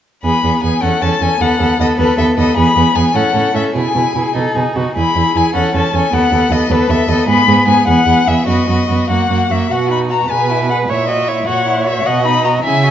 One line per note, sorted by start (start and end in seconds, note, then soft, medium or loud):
0.23 0.32 E2 soft
0.23 0.43 B3 soft
0.23 0.44 G#4 soft
0.23 0.60 B5 medium
0.44 0.52 E2 soft
0.44 0.63 B3 soft
0.44 0.63 G#4 soft
0.63 0.71 E2 soft
0.63 0.82 B3 soft
0.63 0.82 G#4 soft
0.63 0.84 G#5 soft
0.82 0.91 E2 soft
0.82 1.01 C#4 soft
0.82 1.02 A4 soft
0.82 1.03 F#5 medium
1.02 1.10 E2 soft
1.02 1.20 C#4 soft
1.02 1.21 A4 soft
1.02 1.23 A5 medium
1.21 1.29 E2 soft
1.21 1.40 C#4 soft
1.21 1.40 A4 soft
1.21 1.43 G#5 medium
1.40 1.48 D#2 soft
1.40 1.59 B3 soft
1.40 1.59 A4 soft
1.40 1.80 F#5 medium
1.60 1.68 D#2 soft
1.60 1.79 B3 soft
1.60 1.79 A4 soft
1.79 1.87 D#2 soft
1.79 1.97 B3 soft
1.79 1.98 A4 soft
1.79 1.88 D#5 medium
1.98 2.06 D#2 soft
1.98 2.17 B3 soft
1.98 2.18 A4 soft
1.98 2.17 B4 medium
2.18 2.26 D#2 soft
2.18 2.37 B3 soft
2.18 2.37 A4 soft
2.18 2.25 E5 medium
2.37 2.45 D#2 soft
2.37 2.56 B3 soft
2.37 2.56 A4 soft
2.37 2.56 D#5 medium
2.56 2.64 E2 soft
2.56 2.75 B3 soft
2.56 2.76 G#4 soft
2.56 2.97 B5 medium
2.76 2.84 E2 soft
2.76 2.94 B3 soft
2.76 2.95 G#4 soft
2.95 3.03 E2 soft
2.95 3.14 B3 soft
2.95 3.15 G#4 soft
2.95 3.17 G#5 medium
3.15 3.23 A2 soft
3.15 3.34 C#4 soft
3.15 3.34 A4 soft
3.15 3.55 F#5 medium
3.35 3.43 A2 soft
3.35 3.54 C#4 soft
3.35 3.54 A4 soft
3.54 3.63 A2 soft
3.54 3.74 C#4 soft
3.54 3.75 A4 soft
3.54 3.63 E5 soft
3.75 3.83 B2 soft
3.75 3.95 E4 soft
3.75 3.95 G#4 soft
3.75 4.34 G#5 soft
3.95 4.03 B2 soft
3.95 4.14 E4 soft
3.95 4.15 G#4 soft
4.15 4.23 B2 soft
4.15 4.35 E4 soft
4.15 4.35 G#4 soft
4.35 4.44 B2 soft
4.35 4.54 D#4 soft
4.35 4.57 A4 soft
4.55 4.64 B2 soft
4.55 4.75 D#4 soft
4.55 4.78 G#4 soft
4.76 4.84 B2 soft
4.76 4.95 D#4 soft
4.76 4.95 F#4 soft
4.95 5.04 E2 soft
4.95 5.15 E4 soft
4.95 5.15 G#4 soft
4.95 5.38 B5 medium
5.16 5.23 E2 soft
5.16 5.35 E4 soft
5.16 5.35 G#4 soft
5.35 5.43 E2 soft
5.35 5.54 E4 soft
5.35 5.55 G#4 soft
5.35 5.54 G#5 medium
5.55 5.63 E2 soft
5.55 5.74 C#4 soft
5.55 5.74 A4 soft
5.55 5.74 F#5 medium
5.74 5.82 E2 soft
5.74 5.94 C#4 soft
5.74 5.93 A4 soft
5.74 5.96 A5 medium
5.94 6.01 E2 soft
5.94 6.12 C#4 soft
5.94 6.13 A4 soft
5.94 6.15 G#5 medium
6.13 6.21 D#2 soft
6.13 6.32 B3 soft
6.13 6.32 A4 soft
6.13 6.53 F#5 medium
6.31 6.39 D#2 soft
6.31 6.51 B3 soft
6.31 6.51 A4 soft
6.50 6.58 D#2 soft
6.50 6.70 B3 soft
6.50 6.70 A4 soft
6.50 6.73 D#5 medium
6.70 6.78 D#2 soft
6.70 6.90 B3 soft
6.70 6.89 A4 soft
6.70 6.91 B4 medium
6.89 6.97 D#2 soft
6.89 7.09 B3 soft
6.89 7.08 A4 soft
6.89 7.10 E5 medium
7.08 7.16 D#2 soft
7.08 7.28 B3 soft
7.08 7.28 A4 soft
7.08 7.27 D#5 medium
7.27 7.35 G#2 medium
7.27 7.47 B3 soft
7.27 7.47 G#4 soft
7.27 7.67 B5 medium
7.47 7.55 G#2 medium
7.47 7.67 B3 soft
7.47 7.66 G#4 soft
7.66 7.75 G#2 soft
7.66 7.87 B3 soft
7.66 7.86 G#4 soft
7.66 7.86 G#5 medium
7.87 7.95 E2 soft
7.87 8.07 B3 soft
7.87 8.06 G#4 soft
7.87 8.29 F#5 medium
8.06 8.14 E2 soft
8.06 8.27 B3 soft
8.06 8.26 G#4 soft
8.27 8.35 E2 soft
8.27 8.48 B3 soft
8.27 8.46 G#4 soft
8.27 8.47 E5 medium
8.47 8.55 F#2 soft
8.47 8.69 B3 soft
8.47 8.67 F#4 soft
8.47 9.08 D#5 medium
8.68 8.76 F#2 soft
8.68 8.89 B3 soft
8.68 8.88 F#4 soft
8.89 8.97 F#2 soft
8.89 9.10 B3 soft
8.89 9.08 F#4 soft
9.09 9.17 F#2 soft
9.09 9.30 A#3 soft
9.09 9.29 F#4 soft
9.09 9.52 F#5 soft
9.30 9.38 F#2 soft
9.30 9.51 A#3 soft
9.30 9.49 F#4 soft
9.50 9.58 F#2 soft
9.50 9.71 A#3 soft
9.50 9.70 F#4 soft
9.50 9.73 E5 soft
9.70 10.23 B2 soft
9.70 9.92 F#4 soft
9.70 10.26 F#4 soft
9.70 9.90 F#5 soft
9.90 10.12 D#4 soft
9.90 9.99 B5 soft
10.10 10.30 F#4 soft
10.10 10.32 A#5 soft
10.30 10.82 B2 soft
10.30 10.52 G#4 soft
10.30 10.91 B4 soft
10.30 10.69 G#5 soft
10.50 10.72 E4 soft
10.70 10.88 G#4 soft
10.70 10.78 F#5 soft
10.89 11.40 A#2 soft
10.89 11.10 E4 soft
10.89 11.08 C#5 soft
10.89 11.46 E5 soft
11.08 11.30 F#4 soft
11.08 11.30 D#5 soft
11.28 11.48 E4 soft
11.28 11.47 C#5 soft
11.47 11.98 A#2 soft
11.47 11.66 F#4 soft
11.47 12.08 C#5 soft
11.47 11.85 F#5 soft
11.67 11.88 E4 soft
11.86 12.05 F#4 soft
11.86 12.07 E5 soft
12.05 12.57 B2 soft
12.05 12.27 F#4 soft
12.05 12.64 D#5 soft
12.05 12.24 F#5 medium
12.24 12.46 D#4 soft
12.24 12.43 B5 medium
12.44 12.63 F#4 soft
12.44 12.52 A#5 medium
12.63 12.91 C#3 soft
12.63 12.85 E4 soft
12.63 12.91 E5 soft
12.63 12.91 G#5 medium
12.84 12.91 F#4 soft